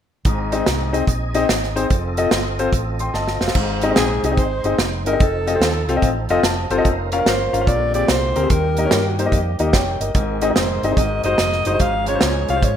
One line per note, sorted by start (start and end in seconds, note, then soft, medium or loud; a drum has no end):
0.25 0.60 G#1 medium
0.25 0.90 G#2 medium
0.25 1.87 C4 medium
0.25 1.87 D#4 medium
0.25 1.87 G#4 medium
0.25 1.87 D#5 medium
0.25 kick medium
0.25 closed hi-hat medium
0.52 0.61 C4 medium
0.52 0.62 D#4 medium
0.52 0.62 G#4 medium
0.52 0.62 D#5 medium
0.52 closed hi-hat medium
0.66 1.02 C2 medium
0.66 snare loud
0.66 closed hi-hat medium
0.93 1.02 C4 medium
0.93 1.02 D#4 medium
0.93 1.03 G#4 medium
0.93 1.03 D#5 medium
0.93 closed hi-hat medium
1.07 1.43 A#1 loud
1.07 kick medium
1.07 closed hi-hat medium
1.34 1.44 C4 medium
1.34 1.44 D#4 medium
1.34 1.44 G#4 medium
1.34 1.44 D#5 medium
1.34 closed hi-hat medium
1.49 1.84 G#1 medium
1.49 snare loud
1.49 closed hi-hat medium
1.64 snare soft
1.76 1.85 C4 medium
1.76 1.85 D#4 medium
1.76 1.85 G#4 medium
1.76 1.85 C5 medium
1.76 closed hi-hat medium
1.90 2.26 F1 loud
1.90 3.52 C4 medium
1.90 3.52 F4 medium
1.90 3.52 A4 medium
1.90 1.97 D5 medium
1.90 kick medium
1.90 closed hi-hat medium
1.96 3.55 D#5 medium
2.17 2.27 C4 medium
2.17 2.27 F4 medium
2.17 2.27 A4 medium
2.17 2.27 D#5 medium
2.17 closed hi-hat medium
2.31 2.67 G1 medium
2.31 snare loud
2.31 closed hi-hat medium
2.59 2.68 C4 medium
2.59 2.68 F4 medium
2.59 2.68 A4 medium
2.59 2.68 C5 medium
2.59 closed hi-hat medium
2.72 3.08 A1 loud
2.72 kick medium
2.72 closed hi-hat medium
2.99 3.14 G5 soft
2.99 3.14 C6 medium
2.99 closed hi-hat medium
3.13 3.37 G1 medium
3.13 3.40 D#5 medium
3.13 3.40 A5 medium
3.13 snare soft
3.28 snare medium
3.41 3.53 F1 medium
3.41 3.81 C5 soft
3.41 3.81 F5 soft
3.41 snare medium
3.48 snare medium
3.55 3.90 G#1 loud
3.55 4.20 G#2 medium
3.55 5.17 G#3 medium
3.55 5.17 C4 medium
3.55 5.17 D#4 medium
3.55 5.17 C5 medium
3.55 kick medium
3.55 crash medium
3.81 3.87 C4 medium
3.81 3.87 D#4 medium
3.81 3.88 G#4 medium
3.81 3.87 D#5 medium
3.81 closed hi-hat medium
3.90 4.00 C4 medium
3.90 4.01 D#4 medium
3.90 4.01 G#4 medium
3.90 4.01 D#5 medium
3.96 4.19 A#1 medium
3.96 4.35 G#4 medium
3.96 snare loud
3.96 closed hi-hat medium
4.23 4.35 C2 medium
4.23 4.29 C4 medium
4.23 4.28 D#4 medium
4.23 4.29 G#4 medium
4.23 4.29 D#5 medium
4.23 closed hi-hat medium
4.31 4.42 C4 medium
4.31 4.42 D#4 medium
4.31 4.42 G#4 medium
4.31 4.42 D#5 medium
4.37 4.61 G#1 medium
4.37 4.77 C5 medium
4.37 kick medium
4.37 closed hi-hat medium
4.64 4.76 G1 medium
4.64 4.74 C4 medium
4.64 4.74 D#4 medium
4.64 4.74 G#4 medium
4.64 4.74 D#5 medium
4.64 closed hi-hat medium
4.78 5.05 F1 medium
4.78 snare medium
4.78 closed hi-hat medium
5.05 5.18 G1 medium
5.05 5.11 C4 medium
5.05 5.11 D#4 medium
5.05 5.11 G#4 medium
5.05 5.23 A#4 medium
5.05 5.11 D#5 medium
5.05 closed hi-hat medium
5.13 5.20 C4 medium
5.13 5.20 D#4 medium
5.13 5.20 G#4 medium
5.13 5.20 D#5 medium
5.20 5.55 F1 medium
5.20 6.82 F3 medium
5.20 6.82 C4 medium
5.20 6.28 D#4 soft
5.20 6.03 A4 medium
5.20 6.28 A4 medium
5.20 kick loud
5.20 closed hi-hat medium
5.47 5.52 C4 medium
5.47 5.52 F4 medium
5.47 5.52 A4 medium
5.47 5.52 D#5 medium
5.47 closed hi-hat medium
5.55 5.65 C4 medium
5.55 5.65 F4 soft
5.55 5.65 A4 medium
5.55 5.66 C5 medium
5.60 5.84 D#2 medium
5.60 snare loud
5.60 closed hi-hat medium
5.87 6.00 C2 medium
5.87 5.93 C4 medium
5.87 5.93 F4 medium
5.87 5.93 A4 medium
5.87 5.93 F5 medium
5.87 closed hi-hat medium
5.96 6.06 C4 medium
5.96 6.07 F4 medium
5.96 6.07 A4 medium
5.96 6.07 D#5 medium
6.02 6.25 A1 medium
6.02 kick medium
6.02 closed hi-hat medium
6.29 6.41 F1 medium
6.29 6.39 C4 medium
6.29 6.43 D#4 soft
6.29 6.39 F4 medium
6.29 6.39 A4 medium
6.29 6.43 C5 medium
6.29 6.39 D#5 medium
6.29 6.43 F5 medium
6.29 closed hi-hat medium
6.42 6.66 F1 medium
6.42 6.70 G4 medium
6.42 6.70 D#5 medium
6.42 6.69 A5 medium
6.42 snare medium
6.42 closed hi-hat medium
6.70 6.82 G1 medium
6.70 6.75 C4 medium
6.70 7.11 D#4 medium
6.70 6.75 F4 medium
6.70 6.75 A4 medium
6.70 6.76 C5 medium
6.70 7.11 C5 medium
6.70 6.84 A5 medium
6.70 closed hi-hat medium
6.77 6.85 C4 medium
6.77 6.85 F4 medium
6.77 6.85 A4 medium
6.77 6.85 D#5 medium
6.85 7.20 F1 medium
6.85 7.66 F3 medium
6.85 7.66 A#3 medium
6.85 6.92 C4 medium
6.85 7.66 A#4 medium
6.85 kick medium
6.85 closed hi-hat medium
6.91 7.69 C#4 medium
7.12 7.17 C#4 medium
7.12 7.17 F4 medium
7.12 7.17 A#4 medium
7.12 7.17 F5 medium
7.12 closed hi-hat medium
7.18 7.30 C#4 medium
7.18 7.30 F4 medium
7.18 7.30 A#4 medium
7.18 7.30 F5 medium
7.26 7.49 G1 medium
7.26 7.69 C5 medium
7.26 snare loud
7.26 closed hi-hat medium
7.53 7.65 G#1 medium
7.53 7.58 C#4 medium
7.53 7.58 F4 medium
7.53 7.58 A#4 medium
7.53 7.58 F5 medium
7.53 closed hi-hat medium
7.61 7.68 C#4 medium
7.61 7.68 F4 medium
7.61 7.68 A#4 soft
7.61 7.68 F5 medium
7.67 8.02 A#1 medium
7.67 8.32 A#2 medium
7.67 8.49 D3 medium
7.67 8.48 G#3 medium
7.67 8.48 C4 medium
7.67 8.48 G4 medium
7.67 7.94 D5 medium
7.67 kick medium
7.67 closed hi-hat medium
7.94 8.04 C4 medium
7.94 8.04 G4 medium
7.94 8.04 G#4 medium
7.94 8.11 D5 loud
7.94 8.04 D5 medium
7.94 closed hi-hat medium
8.08 8.32 C2 loud
8.08 8.51 C5 medium
8.08 snare loud
8.08 closed hi-hat medium
8.36 8.48 D2 medium
8.36 8.40 C4 medium
8.36 8.40 G4 medium
8.36 8.41 G#4 medium
8.36 8.40 A#4 medium
8.36 closed hi-hat medium
8.43 8.50 C4 medium
8.43 8.50 G4 medium
8.43 8.50 G#4 medium
8.43 8.50 C5 medium
8.50 8.85 D#2 medium
8.50 10.12 D#3 medium
8.50 9.15 D#3 medium
8.50 10.12 G3 medium
8.50 10.12 A#3 medium
8.50 10.12 G4 medium
8.50 9.08 A#4 medium
8.50 kick loud
8.50 closed hi-hat medium
8.77 8.82 A#3 medium
8.77 8.82 D#4 medium
8.77 8.82 G4 medium
8.77 8.82 D#5 medium
8.77 closed hi-hat medium
8.85 8.95 A#3 medium
8.85 8.95 D#4 medium
8.85 8.95 G4 medium
8.85 8.95 C#5 medium
8.91 9.26 G2 medium
8.91 snare loud
8.91 closed hi-hat medium
9.08 9.20 F#4 medium
9.19 9.23 A#3 medium
9.19 9.23 D#4 medium
9.19 9.60 G4 medium
9.19 9.23 G4 medium
9.19 9.23 C5 medium
9.19 closed hi-hat medium
9.26 9.36 A#3 medium
9.26 9.36 D#4 medium
9.26 9.36 G4 medium
9.26 9.37 D#5 medium
9.32 9.55 F2 medium
9.32 kick medium
9.32 closed hi-hat medium
9.59 9.72 D#2 medium
9.59 9.68 A#3 medium
9.59 9.69 D#4 medium
9.59 9.69 G4 medium
9.59 9.69 D#5 medium
9.59 closed hi-hat medium
9.73 9.97 F1 medium
9.73 10.00 C#5 medium
9.73 10.00 G5 medium
9.73 kick medium
9.73 snare medium
9.73 closed hi-hat medium
10.00 10.12 G1 medium
10.00 10.40 A#4 soft
10.00 10.40 D#5 medium
10.00 closed hi-hat medium
10.15 10.50 G#1 medium
10.15 10.79 G#2 medium
10.15 10.96 D#3 medium
10.15 10.96 G#3 medium
10.15 10.96 C4 medium
10.15 10.96 G#4 medium
10.15 kick loud
10.15 closed hi-hat medium
10.41 10.46 C4 medium
10.41 10.47 D#4 medium
10.41 10.47 G#4 medium
10.41 10.47 D#5 medium
10.41 closed hi-hat medium
10.50 10.60 C4 medium
10.50 10.60 D#4 medium
10.50 10.60 G#4 medium
10.50 10.60 D#5 medium
10.56 10.79 F1 medium
10.56 10.99 C5 medium
10.56 snare medium
10.56 closed hi-hat medium
10.83 10.95 G1 medium
10.83 10.88 C4 medium
10.83 10.88 D#4 medium
10.83 10.88 G#4 medium
10.83 10.88 D#5 medium
10.83 closed hi-hat medium
10.91 10.98 C4 medium
10.91 10.98 D#4 soft
10.91 10.98 G#4 soft
10.91 10.98 D#5 medium
10.97 11.20 G#1 loud
10.97 11.63 G#2 medium
10.97 11.79 D#3 medium
10.97 11.78 G#3 medium
10.97 11.04 B3 soft
10.97 11.79 F#4 medium
10.97 11.24 D#5 medium
10.97 kick medium
10.97 closed hi-hat medium
11.03 11.81 C4 medium
11.23 11.36 F#1 medium
11.23 11.34 G#3 medium
11.23 11.34 D#4 medium
11.23 11.34 F#4 medium
11.23 11.34 C5 medium
11.23 11.82 D#5 loud
11.23 closed hi-hat medium
11.38 11.62 F1 medium
11.38 snare medium
11.38 closed hi-hat medium
11.53 snare soft
11.65 11.78 F#1 medium
11.65 11.71 G#3 medium
11.65 11.71 D#4 medium
11.65 11.71 F#4 medium
11.65 11.71 C5 medium
11.65 closed hi-hat medium
11.73 11.80 G#3 medium
11.73 11.80 D#4 medium
11.73 11.80 F#4 medium
11.73 11.81 C5 medium
11.79 12.15 G#1 medium
11.79 12.45 G#2 medium
11.79 12.77 F3 medium
11.79 12.77 G#3 soft
11.79 12.77 C#4 medium
11.79 12.77 G#4 medium
11.79 12.07 F5 loud
11.79 kick medium
11.79 closed hi-hat medium
12.06 12.12 G#3 medium
12.06 12.12 C#4 medium
12.06 12.12 F4 medium
12.06 12.46 C#5 medium
12.06 12.12 C#5 medium
12.06 closed hi-hat medium
12.15 12.25 G#3 medium
12.15 12.25 C#4 medium
12.15 12.25 F4 medium
12.15 12.25 C5 medium
12.21 12.45 C#2 medium
12.21 snare loud
12.21 closed hi-hat medium
12.48 12.61 C2 medium
12.48 12.53 G#3 medium
12.48 12.53 C#4 medium
12.48 12.53 F4 medium
12.48 12.54 C#5 medium
12.48 12.66 F5 medium
12.48 closed hi-hat medium
12.56 12.66 G#3 medium
12.56 12.66 C#4 soft
12.56 12.67 F4 medium
12.56 12.67 C5 medium
12.62 12.77 G#2 medium
12.62 12.77 C#5 medium
12.62 kick medium
12.62 closed hi-hat medium